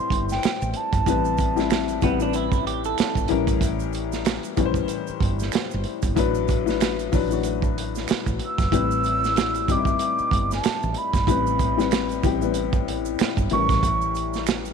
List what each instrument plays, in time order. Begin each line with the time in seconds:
Already playing: upright piano A2 G3 C4 B4 C5, flute C6
0.10 fretless electric bass G1, kick, closed hi-hat
0.29 flute G5, snare, shaker
0.43 finger snap, muted fretless electric bass stroke, snare, closed hi-hat, shaker
0.62 fretless electric bass A1, shaker
0.74 flute A5, closed hi-hat
0.93 fretless electric bass G1, kick, closed hi-hat, shaker
1.06 fretless electric bass A1, upright piano A2 G3 C4 B4, kick, closed hi-hat, shaker
1.25 shaker
1.38 kick, closed hi-hat, shaker
1.56 upright piano A2 G3 C4 E4, snare, shaker
1.70 finger snap, snare, closed hi-hat, shaker
1.88 closed hi-hat, shaker
2.02 fretless electric bass A1, upright piano A2 G3 C4 B4, clean electric guitar B3, kick, closed hi-hat, shaker
2.20 upright piano A2 G3 C4 B4, clean electric guitar D4, shaker
2.33 clean electric guitar E4, closed hi-hat, shaker
2.52 kick, shaker
2.67 clean electric guitar G4, closed hi-hat
2.84 clean electric guitar A4, shaker
2.98 finger snap, muted fretless electric bass stroke, snare, closed hi-hat, shaker
3.15 fretless electric bass G1, kick, shaker
3.28 fretless electric bass A1, upright piano A2 E3 G3 C#4 A#4, closed hi-hat
3.47 kick, closed hi-hat, shaker
3.61 kick, closed hi-hat, shaker
3.80 shaker
3.93 closed hi-hat, shaker
4.12 snare, shaker
4.25 finger snap, snare, closed hi-hat, shaker
4.43 closed hi-hat, shaker
4.57 fretless electric bass A#1, upright piano A2 E3 G3 C#4 B4, kick, closed hi-hat, shaker
4.65 upright piano C5
4.74 kick, shaker
4.88 closed hi-hat, shaker
5.07 muted fretless electric bass stroke, shaker
5.20 fretless electric bass G1, kick, closed hi-hat
5.39 snare, shaker
5.52 finger snap, muted fretless electric bass stroke, snare, closed hi-hat, shaker
5.71 fretless electric bass G1, shaker
5.84 closed hi-hat
6.02 fretless electric bass F#1, kick, closed hi-hat, shaker
6.16 fretless electric bass A1, upright piano A2 F#3 D4 B4, kick, closed hi-hat, shaker
6.35 shaker
6.48 kick, closed hi-hat, shaker
6.66 upright piano A2 F#3 D4 B4, snare, shaker
6.80 finger snap, snare, closed hi-hat, shaker
6.99 closed hi-hat, shaker
7.12 fretless electric bass A1, upright piano A2 F#3 D4 B4, kick, open hi-hat, shaker
7.30 upright piano A2 F#3 D4 F#4, shaker
7.43 closed hi-hat, shaker
7.62 kick, shaker
7.78 closed hi-hat
7.95 snare, shaker
8.08 finger snap, muted fretless electric bass stroke, snare, closed hi-hat, shaker
8.26 fretless electric bass A1, kick, shaker
8.39 closed hi-hat
8.46 flute E6
8.58 fretless electric bass F#1, kick, snare, closed hi-hat, shaker
8.72 fretless electric bass A1, upright piano A2 G3 C4 B4, kick, closed hi-hat, shaker
8.91 shaker
9.04 closed hi-hat, shaker
9.24 snare, shaker
9.36 finger snap, snare, closed hi-hat, shaker
9.54 closed hi-hat, shaker
9.68 fretless electric bass G1, upright piano A2 G3 C4 D#4, flute D6, kick, closed hi-hat, shaker
9.77 upright piano E4
9.85 kick, shaker
9.99 closed hi-hat, shaker
10.19 muted fretless electric bass stroke, shaker
10.31 fretless electric bass G1, kick, closed hi-hat
10.51 flute A5, snare, shaker
10.64 finger snap, muted fretless electric bass stroke, snare, closed hi-hat, shaker
10.82 fretless electric bass A1, shaker
10.94 flute B5, closed hi-hat
11.13 fretless electric bass G1, kick, snare, closed hi-hat, shaker
11.27 fretless electric bass A1, upright piano A2 G3 C4 B4, kick, closed hi-hat, shaker
11.47 shaker
11.59 kick, closed hi-hat, shaker
11.77 upright piano A2 G3 C4 B4, snare, shaker
11.91 finger snap, snare, closed hi-hat, shaker
12.09 closed hi-hat, shaker
12.23 fretless electric bass A1, upright piano A2 G3 C4 G4, kick, closed hi-hat, shaker
12.41 upright piano A2 G3 B3 B4, shaker
12.50 upright piano C4
12.54 closed hi-hat, shaker
12.73 kick, shaker
12.88 closed hi-hat
13.05 shaker
13.19 finger snap, muted fretless electric bass stroke, snare, closed hi-hat, shaker
13.37 fretless electric bass G1, kick, shaker
13.50 fretless electric bass A1, upright piano A2 E3 G3 C#4, flute C#6, closed hi-hat
13.54 upright piano A#4
13.69 kick, snare, closed hi-hat, shaker
13.83 kick, closed hi-hat, shaker
14.01 shaker
14.15 closed hi-hat, shaker
14.34 snare, shaker
14.47 finger snap, snare, closed hi-hat, shaker
14.65 closed hi-hat, shaker